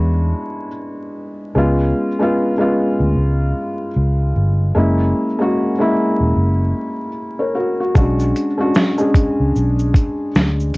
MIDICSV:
0, 0, Header, 1, 4, 480
1, 0, Start_track
1, 0, Tempo, 800000
1, 930, Time_signature, 4, 2, 24, 8
1, 6464, End_track
2, 0, Start_track
2, 0, Title_t, "Felt piano"
2, 0, Program_c, 0, 0
2, 0, Control_c, 0, 64, 127
2, 0, Note_on_c, 0, 56, 84
2, 0, Note_on_c, 0, 59, 75
2, 0, Note_on_c, 0, 62, 71
2, 0, Note_on_c, 0, 64, 92
2, 0, Note_on_c, 0, 66, 94
2, 400, Note_off_c, 0, 56, 0
2, 402, Note_off_c, 0, 59, 0
2, 406, Note_off_c, 0, 62, 0
2, 409, Note_off_c, 0, 66, 0
2, 930, Note_on_c, 0, 56, 81
2, 937, Note_on_c, 0, 59, 73
2, 938, Note_off_c, 0, 64, 0
2, 938, Control_c, 0, 64, 0
2, 944, Note_on_c, 0, 61, 70
2, 947, Note_on_c, 0, 65, 92
2, 1056, Control_c, 0, 64, 127
2, 1234, Note_off_c, 0, 56, 0
2, 1237, Note_off_c, 0, 59, 0
2, 1240, Note_off_c, 0, 61, 0
2, 1242, Note_off_c, 0, 65, 0
2, 1316, Note_on_c, 0, 56, 81
2, 1322, Note_on_c, 0, 59, 77
2, 1329, Note_on_c, 0, 61, 67
2, 1335, Note_on_c, 0, 65, 97
2, 1502, Note_off_c, 0, 56, 0
2, 1505, Note_off_c, 0, 59, 0
2, 1508, Note_off_c, 0, 61, 0
2, 1511, Note_off_c, 0, 65, 0
2, 1548, Note_on_c, 0, 56, 86
2, 1555, Note_on_c, 0, 59, 80
2, 1561, Note_on_c, 0, 61, 72
2, 1565, Note_on_c, 0, 65, 90
2, 2320, Note_off_c, 0, 56, 0
2, 2324, Note_off_c, 0, 59, 0
2, 2327, Note_off_c, 0, 61, 0
2, 2329, Note_off_c, 0, 65, 0
2, 2849, Note_on_c, 0, 56, 80
2, 2855, Note_on_c, 0, 58, 72
2, 2857, Control_c, 0, 64, 0
2, 2859, Note_on_c, 0, 61, 72
2, 2865, Note_on_c, 0, 64, 77
2, 2975, Control_c, 0, 64, 127
2, 3153, Note_off_c, 0, 56, 0
2, 3156, Note_off_c, 0, 58, 0
2, 3158, Note_off_c, 0, 61, 0
2, 3161, Note_off_c, 0, 64, 0
2, 3232, Note_on_c, 0, 56, 77
2, 3237, Note_on_c, 0, 58, 72
2, 3242, Note_on_c, 0, 61, 70
2, 3250, Note_on_c, 0, 66, 86
2, 3419, Note_off_c, 0, 56, 0
2, 3422, Note_off_c, 0, 58, 0
2, 3424, Note_off_c, 0, 61, 0
2, 3428, Note_off_c, 0, 66, 0
2, 3472, Note_on_c, 0, 56, 81
2, 3478, Note_on_c, 0, 58, 73
2, 3482, Note_on_c, 0, 61, 74
2, 3487, Note_on_c, 0, 64, 91
2, 4242, Note_off_c, 0, 56, 0
2, 4245, Note_off_c, 0, 58, 0
2, 4248, Note_off_c, 0, 61, 0
2, 4250, Note_off_c, 0, 64, 0
2, 4434, Note_on_c, 0, 73, 52
2, 4438, Note_on_c, 0, 70, 57
2, 4518, Note_off_c, 0, 70, 0
2, 4525, Note_off_c, 0, 73, 0
2, 4527, Note_on_c, 0, 70, 64
2, 4530, Note_on_c, 0, 66, 61
2, 4665, Note_off_c, 0, 70, 0
2, 4666, Note_off_c, 0, 66, 0
2, 4681, Note_on_c, 0, 66, 64
2, 4767, Note_on_c, 0, 56, 75
2, 4775, Note_on_c, 0, 61, 65
2, 4776, Note_off_c, 0, 66, 0
2, 4778, Control_c, 0, 64, 0
2, 4779, Note_on_c, 0, 62, 74
2, 4785, Note_on_c, 0, 66, 87
2, 4899, Control_c, 0, 64, 127
2, 5072, Note_off_c, 0, 56, 0
2, 5076, Note_off_c, 0, 61, 0
2, 5078, Note_off_c, 0, 62, 0
2, 5081, Note_off_c, 0, 66, 0
2, 5146, Note_on_c, 0, 56, 74
2, 5150, Note_on_c, 0, 61, 76
2, 5158, Note_on_c, 0, 62, 74
2, 5163, Note_on_c, 0, 66, 93
2, 5336, Note_off_c, 0, 56, 0
2, 5338, Note_off_c, 0, 61, 0
2, 5342, Note_off_c, 0, 62, 0
2, 5345, Note_off_c, 0, 66, 0
2, 5387, Note_on_c, 0, 56, 81
2, 5390, Note_on_c, 0, 61, 76
2, 5396, Note_on_c, 0, 62, 73
2, 5403, Note_on_c, 0, 68, 88
2, 6160, Note_off_c, 0, 56, 0
2, 6161, Note_off_c, 0, 61, 0
2, 6164, Note_off_c, 0, 62, 0
2, 6168, Note_off_c, 0, 68, 0
2, 6464, End_track
3, 0, Start_track
3, 0, Title_t, "Fingered electric bass"
3, 0, Program_c, 1, 33
3, 0, Note_on_c, 1, 40, 85
3, 193, Note_off_c, 1, 40, 0
3, 934, Note_on_c, 1, 37, 88
3, 1150, Note_off_c, 1, 37, 0
3, 1800, Note_on_c, 1, 38, 88
3, 1885, Note_off_c, 1, 38, 0
3, 1896, Note_on_c, 1, 37, 91
3, 2111, Note_off_c, 1, 37, 0
3, 2377, Note_on_c, 1, 37, 84
3, 2591, Note_off_c, 1, 37, 0
3, 2615, Note_on_c, 1, 31, 95
3, 2831, Note_off_c, 1, 31, 0
3, 2856, Note_on_c, 1, 30, 92
3, 3071, Note_off_c, 1, 30, 0
3, 3722, Note_on_c, 1, 28, 77
3, 3806, Note_off_c, 1, 28, 0
3, 3817, Note_on_c, 1, 30, 74
3, 4031, Note_off_c, 1, 30, 0
3, 4775, Note_on_c, 1, 35, 109
3, 4991, Note_off_c, 1, 35, 0
3, 5639, Note_on_c, 1, 37, 73
3, 5724, Note_off_c, 1, 37, 0
3, 5735, Note_on_c, 1, 35, 79
3, 5950, Note_off_c, 1, 35, 0
3, 6213, Note_on_c, 1, 38, 86
3, 6430, Note_off_c, 1, 38, 0
3, 6464, End_track
4, 0, Start_track
4, 0, Title_t, "Drums"
4, 4772, Note_on_c, 9, 36, 115
4, 4773, Note_on_c, 9, 82, 60
4, 4832, Note_off_c, 9, 36, 0
4, 4833, Note_off_c, 9, 82, 0
4, 4917, Note_on_c, 9, 82, 46
4, 4977, Note_off_c, 9, 82, 0
4, 5016, Note_on_c, 9, 42, 56
4, 5016, Note_on_c, 9, 82, 45
4, 5076, Note_off_c, 9, 42, 0
4, 5076, Note_off_c, 9, 82, 0
4, 5248, Note_on_c, 9, 82, 66
4, 5257, Note_on_c, 9, 38, 108
4, 5308, Note_off_c, 9, 82, 0
4, 5317, Note_off_c, 9, 38, 0
4, 5388, Note_on_c, 9, 82, 39
4, 5448, Note_off_c, 9, 82, 0
4, 5486, Note_on_c, 9, 36, 86
4, 5493, Note_on_c, 9, 42, 71
4, 5493, Note_on_c, 9, 82, 47
4, 5546, Note_off_c, 9, 36, 0
4, 5553, Note_off_c, 9, 42, 0
4, 5553, Note_off_c, 9, 82, 0
4, 5735, Note_on_c, 9, 82, 52
4, 5795, Note_off_c, 9, 82, 0
4, 5875, Note_on_c, 9, 82, 54
4, 5935, Note_off_c, 9, 82, 0
4, 5965, Note_on_c, 9, 36, 88
4, 5975, Note_on_c, 9, 42, 72
4, 5975, Note_on_c, 9, 82, 52
4, 6025, Note_off_c, 9, 36, 0
4, 6035, Note_off_c, 9, 42, 0
4, 6035, Note_off_c, 9, 82, 0
4, 6213, Note_on_c, 9, 82, 64
4, 6216, Note_on_c, 9, 38, 116
4, 6273, Note_off_c, 9, 82, 0
4, 6276, Note_off_c, 9, 38, 0
4, 6361, Note_on_c, 9, 82, 45
4, 6421, Note_off_c, 9, 82, 0
4, 6445, Note_on_c, 9, 42, 75
4, 6445, Note_on_c, 9, 82, 53
4, 6464, Note_off_c, 9, 42, 0
4, 6464, Note_off_c, 9, 82, 0
4, 6464, End_track
0, 0, End_of_file